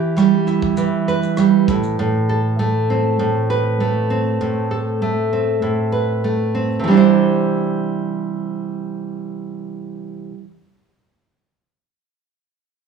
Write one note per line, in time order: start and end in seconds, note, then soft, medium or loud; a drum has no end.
0.00 0.77 E3 medium
0.00 1.74 G4 medium
0.17 1.37 G3 medium
0.17 cross-stick medium
0.17 shaker soft
0.47 2.90 E4 soft
0.47 shaker soft
0.62 kick medium
0.77 4.27 E3 medium
0.77 shaker medium
1.08 2.02 B4 medium
1.08 shaker soft
1.23 shaker soft
1.37 1.74 G3 medium
1.37 cross-stick loud
1.37 shaker medium
1.68 1.98 A2 medium
1.68 kick loud
1.68 shaker soft
1.83 shaker soft
1.99 3.18 A2 medium
2.29 4.70 A4 medium
2.59 3.79 A3 medium
2.90 4.10 C4 soft
3.19 4.40 A2 medium
3.50 5.91 B4 medium
3.80 5.01 A3 soft
4.10 5.32 C4 soft
4.41 5.61 A2 medium
4.71 6.90 A4 soft
5.02 6.23 A3 medium
5.33 6.54 C4 soft
5.62 6.79 A2 medium
5.92 6.90 B4 medium
6.24 6.87 A3 soft
6.55 6.90 C4 soft
6.79 10.29 C3 medium
6.84 10.34 E3 medium
6.88 10.38 G3 medium
6.88 10.41 D4 medium
6.94 10.44 E4 medium
6.94 10.47 C5 medium